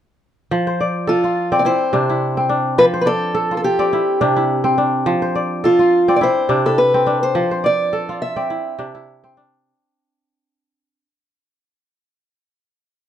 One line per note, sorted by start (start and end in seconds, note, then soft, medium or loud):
0.51 1.70 F3 medium
0.67 1.86 C5 medium
0.81 1.52 D5 medium
1.07 1.60 F4 medium
1.07 2.39 A4 medium
1.24 1.71 F4 medium
1.52 2.37 C4 medium
1.52 2.63 D5 medium
1.59 1.65 D5 medium
1.65 2.09 E4 medium
1.65 2.78 C5 medium
1.93 2.84 C3 medium
1.93 2.49 D4 medium
2.09 2.84 E4 medium
2.37 3.79 C4 medium
2.49 4.17 D4 medium
2.78 3.98 F3 medium
2.78 2.84 B4 medium
2.94 4.12 C5 medium
3.01 3.08 B4 medium
3.06 3.56 A4 medium
3.06 3.79 D5 medium
3.35 4.66 A4 medium
3.51 3.99 F4 medium
3.57 3.64 A4 medium
3.64 4.75 G4 medium
3.79 4.64 C4 medium
3.79 4.90 D5 medium
3.93 4.36 E4 medium
4.21 5.12 C3 medium
4.21 4.77 D4 medium
4.36 5.12 E4 medium
4.64 6.08 C4 medium
4.78 6.46 D4 medium
5.06 6.27 F3 medium
5.22 6.41 C5 medium
5.35 6.08 D5 medium
5.64 6.17 F4 medium
5.64 6.96 A4 medium
5.79 6.27 F4 medium
6.08 6.94 C4 medium
6.08 7.20 D5 medium
6.16 6.22 D5 medium
6.21 6.65 E4 medium
6.21 6.68 C5 medium
6.49 7.41 C3 medium
6.49 7.06 D4 medium
6.66 7.41 E4 medium
6.66 6.78 A4 medium
6.78 7.20 B4 medium
6.94 8.36 C4 medium
7.07 8.74 D4 medium
7.23 7.65 C5 medium
7.35 8.56 F3 medium
7.51 8.70 C5 medium
7.64 8.36 D5 medium
7.64 8.21 D5 medium
7.93 9.25 A4 medium
8.09 8.56 F4 medium
8.22 9.32 E5 medium
8.36 9.23 C4 medium
8.36 9.47 D5 medium
8.50 8.94 E4 medium
8.79 9.70 C3 medium
8.79 9.37 D4 medium
8.95 10.51 E4 medium
9.24 11.04 C4 medium
9.37 11.05 D4 medium